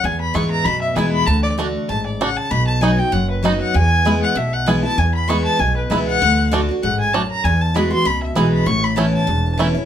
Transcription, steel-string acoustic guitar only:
0.04 0.63 E2 medium
0.34 0.64 E3 loud
0.34 0.65 G#3 medium
0.34 0.65 B3 loud
0.34 0.65 E4 medium
0.66 1.25 B2 loud
0.96 1.26 E3 medium
0.96 1.26 G#3 medium
0.96 1.27 B3 medium
0.96 1.27 E4 loud
1.27 1.56 D3 medium
1.58 1.88 D3 medium
1.58 1.88 A3 medium
1.58 1.89 D4 loud
1.58 1.89 F#4 loud
1.89 2.19 G#2 medium
2.21 2.50 C#3 medium
2.51 3.10 B2 loud
2.81 2.98 F#3 medium
2.81 2.99 B3 medium
2.81 2.99 D#4 medium
2.81 2.97 F#4 loud
2.98 3.13 D#4 soft
2.98 3.12 F#4 medium
3.12 3.72 F#2 loud
3.43 3.73 F#3 medium
3.43 3.73 B3 loud
3.43 3.74 D#4 loud
3.43 3.74 F#4 loud
3.74 4.33 E2 loud
4.05 4.35 E3 medium
4.05 4.35 G#3 loud
4.05 4.35 B3 medium
4.05 4.36 E4 loud
4.35 4.95 B2 loud
4.66 4.83 E3 loud
4.66 4.83 G#3 loud
4.66 4.84 B3 loud
4.66 4.82 E4 loud
4.83 4.98 B3 medium
4.83 4.97 E4 medium
4.98 5.57 E2 medium
5.28 5.58 E3 loud
5.28 5.58 G#3 medium
5.28 5.59 B3 loud
5.28 5.59 E4 loud
5.59 6.18 B2 medium
5.90 6.20 E3 medium
5.90 6.20 G#3 medium
5.90 6.20 B3 loud
5.90 6.21 E4 loud
6.22 6.50 D3 loud
6.51 6.68 D3 loud
6.51 6.68 A3 loud
6.51 6.69 D4 loud
6.51 6.67 F#4 loud
6.69 6.83 D4 medium
6.69 6.82 F#4 medium
6.83 7.12 G#2 loud
7.14 7.43 F#2 medium
7.45 8.03 E2 loud
7.74 7.91 E3 medium
7.74 7.91 G#3 medium
7.74 7.92 B3 loud
7.74 7.89 F#4 loud
7.90 8.06 B3 medium
7.90 8.04 F#4 medium
8.05 8.64 B2 loud
8.35 8.65 E3 loud
8.35 8.66 G#3 loud
8.35 8.66 B3 loud
8.35 8.66 F#4 medium
8.66 9.25 A2 loud
8.96 9.26 E3 loud
8.96 9.27 B3 medium
8.96 9.27 C#4 loud
8.96 9.27 E4 loud
9.27 9.85 E2 loud
9.58 9.74 E3 medium
9.58 9.75 B3 medium
9.58 9.75 C#4 loud
9.58 9.73 E4 loud
9.75 9.85 C#4 medium
9.75 9.85 E4 medium

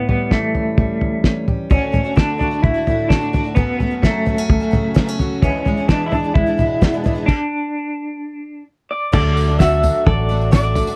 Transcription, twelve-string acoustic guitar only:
1.70 1.91 D3 medium
1.70 1.92 A3 medium
1.70 1.93 D4 medium
1.70 1.94 F#4 medium
1.92 2.05 D3 soft
1.92 2.05 A3 soft
1.92 2.04 D4 medium
1.92 2.03 F#4 medium
2.05 2.15 A3 soft
2.05 2.16 D4 soft
2.05 2.17 F#4 soft
2.16 2.37 D3 medium
2.16 2.39 A3 medium
2.16 2.39 D4 medium
2.16 2.41 F#4 medium
2.38 2.51 D3 soft
2.38 2.52 A3 soft
2.38 2.52 D4 soft
2.38 2.50 F#4 soft
2.51 2.76 A3 soft
2.51 2.75 D4 soft
2.51 2.73 F#4 soft
2.74 2.87 A3 soft
2.74 2.87 D4 soft
2.74 2.86 F#4 soft
2.87 3.10 D3 medium
2.87 3.10 A3 medium
2.87 3.11 D4 medium
2.87 3.12 F#4 medium
3.11 3.22 D3 medium
3.11 3.22 A3 medium
3.11 3.22 D4 medium
3.11 3.20 F#4 medium
3.21 3.33 A3 soft
3.21 3.34 D4 soft
3.21 3.33 F#4 soft
3.33 3.45 D3 soft
3.33 3.45 A3 medium
3.33 3.45 D4 medium
3.33 3.43 F#4 medium
3.44 3.56 A3 soft
3.44 3.57 D4 soft
3.44 3.56 F#4 soft
3.56 3.79 F#2 medium
3.56 3.80 C#3 medium
3.56 3.78 F#3 medium
3.56 3.79 A3 medium
3.56 3.80 C#4 medium
3.56 3.80 F#4 medium
3.79 3.91 F#3 soft
3.79 3.91 A3 soft
3.79 3.90 C#4 soft
3.79 3.89 F#4 medium
3.90 4.03 F#3 soft
3.90 4.03 A3 soft
3.90 4.03 C#4 soft
3.90 4.02 F#4 soft
4.03 4.26 F#2 medium
4.03 4.26 C#3 medium
4.03 4.24 F#3 medium
4.03 4.25 A3 medium
4.03 4.26 C#4 medium
4.03 4.27 F#4 medium
4.25 4.37 F#3 soft
4.25 4.37 A3 soft
4.25 4.37 C#4 medium
4.25 4.35 F#4 soft
4.37 4.62 F#3 soft
4.37 4.61 A3 soft
4.37 4.60 C#4 soft
4.37 4.59 F#4 soft
4.60 4.70 F#3 soft
4.60 4.71 A3 soft
4.60 4.72 C#4 soft
4.60 4.72 F#4 medium
4.71 4.94 F#3 medium
4.71 4.94 A3 medium
4.71 4.95 C#4 medium
4.71 4.96 F#4 medium
4.94 5.07 F#2 medium
4.94 5.07 C#3 medium
4.94 5.07 F#3 medium
4.94 5.07 A3 medium
4.94 5.06 C#4 medium
4.94 5.05 F#4 medium
5.06 5.17 F#3 soft
5.06 5.19 A3 soft
5.06 5.19 C#4 medium
5.06 5.18 F#4 medium
5.18 5.42 F#3 medium
5.18 5.43 A3 medium
5.18 5.43 C#4 medium
5.18 5.43 F#4 medium
5.43 5.66 E2 medium
5.43 5.66 B2 medium
5.43 5.64 E3 medium
5.43 5.65 G#3 medium
5.43 5.66 D4 medium
5.43 5.67 E4 medium
5.65 5.77 E3 soft
5.65 5.77 G#3 soft
5.65 5.77 D4 soft
5.65 5.76 E4 medium
5.77 5.89 E3 soft
5.77 5.89 G#3 soft
5.77 5.89 D4 soft
5.77 5.89 E4 medium
5.89 6.12 E2 medium
5.89 6.12 B2 medium
5.89 6.10 E3 medium
5.89 6.12 G#3 medium
5.89 6.12 D4 medium
5.89 6.13 E4 medium
6.11 6.23 E3 soft
6.11 6.24 G#3 soft
6.11 6.23 D4 soft
6.11 6.22 E4 soft
6.23 6.48 E3 soft
6.23 6.47 G#3 soft
6.23 6.46 D4 soft
6.23 6.45 E4 soft
6.46 6.57 E3 soft
6.46 6.58 G#3 soft
6.46 6.58 D4 soft
6.46 6.58 E4 soft
6.58 6.81 E3 medium
6.58 6.81 G#3 medium
6.58 6.82 D4 medium
6.58 6.82 E4 medium
6.81 6.93 E2 medium
6.81 6.93 B2 medium
6.81 6.94 E3 medium
6.81 6.93 G#3 medium
6.81 6.93 D4 medium
6.81 6.92 E4 medium
6.93 7.02 E3 soft
6.93 7.03 G#3 soft
6.93 7.05 D4 medium
6.93 7.05 E4 medium
7.04 7.16 E3 medium
7.04 7.16 G#3 medium
7.04 7.15 D4 medium
7.04 7.14 E4 medium
7.15 7.29 E3 soft
7.15 7.28 G#3 soft
7.15 7.28 D4 soft
7.15 7.27 E4 soft
9.12 9.48 D3 medium
9.12 9.48 A3 medium
9.12 9.48 D4 medium
9.12 9.46 F#4 medium
9.48 9.59 A3 soft
9.48 9.60 D4 soft
9.48 9.60 F#4 soft
9.59 9.81 D3 medium
9.59 9.82 A3 medium
9.59 9.83 D4 medium
9.59 9.84 F#4 medium
9.82 10.28 D3 soft
9.82 10.28 A3 medium
9.82 10.30 D4 medium
9.82 10.31 F#4 medium
10.29 10.50 D3 medium
10.29 10.51 A3 medium
10.29 10.52 D4 medium
10.29 10.52 F#4 medium
10.51 10.63 D3 medium
10.51 10.64 A3 medium
10.51 10.64 D4 medium
10.51 10.62 F#4 medium
10.63 10.75 A3 soft
10.63 10.76 D4 soft
10.63 10.75 F#4 medium
10.75 10.87 D3 medium
10.75 10.88 A3 medium
10.75 10.88 D4 medium
10.75 10.86 F#4 medium
10.87 10.96 A3 soft
10.87 10.96 D4 soft
10.87 10.96 F#4 soft

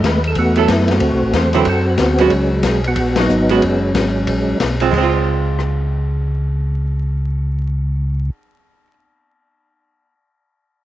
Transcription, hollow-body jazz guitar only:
0.57 0.68 F#3 medium
0.57 0.68 B3 medium
0.57 0.68 E4 medium
0.57 0.69 A4 medium
1.54 1.66 D3 medium
1.54 1.66 F#3 medium
1.54 1.66 C4 medium
1.54 1.66 E4 medium
2.19 2.31 G#3 medium
2.19 2.31 B3 medium
2.19 2.31 F#4 medium
3.50 3.61 G#3 medium
3.50 3.62 B3 medium
3.50 3.62 F#4 medium
4.81 4.90 G#3 medium
4.81 4.93 C4 medium
4.81 4.93 F4 medium
4.91 8.87 G#3 medium
4.98 8.93 C4 medium
5.03 8.99 F4 medium

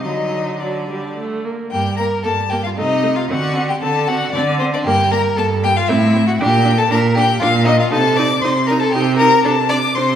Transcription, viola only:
0.04 0.60 F#3 medium
0.62 0.88 F#3 medium
0.89 1.17 G3 medium
1.17 1.46 A3 medium
1.45 1.72 A#3 medium
1.73 1.81 A#3 medium
1.99 2.07 A#3 medium
2.25 2.33 A#3 medium
2.52 2.60 A#3 medium
2.78 2.86 A3 medium
3.03 3.11 A3 medium
3.30 3.38 C4 medium
3.56 3.64 C4 medium
3.83 3.91 C4 medium
4.09 4.17 C4 medium
4.35 4.43 C4 medium
4.61 4.69 C4 medium
4.86 4.94 A#3 medium
5.12 5.20 A#3 medium
5.38 5.46 A#3 medium
5.64 5.72 A#3 medium
5.89 5.97 C4 medium
6.15 6.23 C4 medium
6.41 6.49 D4 loud
6.65 6.73 D4 medium
6.90 6.98 D4 medium
7.16 7.24 D4 medium
7.42 7.50 D4 medium
7.67 7.75 D4 medium
7.92 8.00 D#4 medium
8.18 8.26 D#4 medium
8.44 8.52 D#4 medium
8.70 8.78 D#4 medium
8.95 9.03 D#4 medium
9.20 9.28 D#4 medium
9.45 9.53 D4 medium
9.71 9.79 D4 medium
9.96 10.04 D4 medium

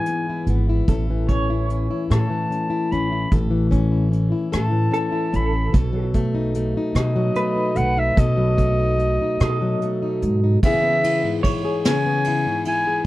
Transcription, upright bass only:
0.47 0.80 G#1 medium
0.88 1.88 A1 medium
2.10 2.43 A2 medium
2.92 3.25 A1 medium
3.32 4.30 A1 medium
4.53 4.86 A2 medium
5.34 5.67 A1 medium
5.74 6.72 B1 medium
6.95 7.28 B2 medium
7.77 8.10 B1 medium
8.17 9.17 B1 medium
9.41 9.74 B2 medium
10.22 10.55 G#2 medium

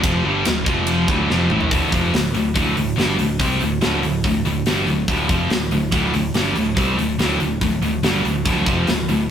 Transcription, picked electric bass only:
0.04 0.23 F1 medium
0.25 0.44 G1 medium
0.46 0.65 D1 medium
0.66 1.05 F1 medium
1.08 1.27 D1 medium
1.30 1.49 F1 loud
1.51 1.70 A1 medium
1.71 1.91 D1 medium
1.92 2.12 F1 loud
2.13 2.33 D1 medium
2.34 2.54 D1 medium
2.56 2.75 D1 medium
2.77 2.96 D1 medium
2.97 3.17 G1 loud
3.19 3.38 D1 medium
3.40 3.59 C2 loud
3.62 3.81 D1 medium
3.82 4.01 D1 medium
4.03 4.22 D1 medium
4.24 4.43 D1 medium
4.45 4.64 D1 medium
4.67 4.86 G1 loud
4.88 5.07 D1 medium
5.08 5.28 D1 medium
5.29 5.49 F1 loud
5.51 5.70 D1 medium
5.72 5.91 D1 medium
5.92 6.12 D1 medium
6.14 6.33 D1 medium
6.34 6.54 G1 medium
6.55 6.75 D1 medium
6.77 6.96 C2 medium
6.98 7.17 D1 medium
7.19 7.38 D1 medium
7.40 7.59 D1 medium
7.61 7.81 D1 medium
7.82 8.02 D1 medium
8.03 8.22 G1 medium
8.23 8.43 D1 medium
8.46 8.65 D1 loud
8.67 8.86 F1 loud
8.87 9.07 D1 medium
9.08 9.28 D1 medium

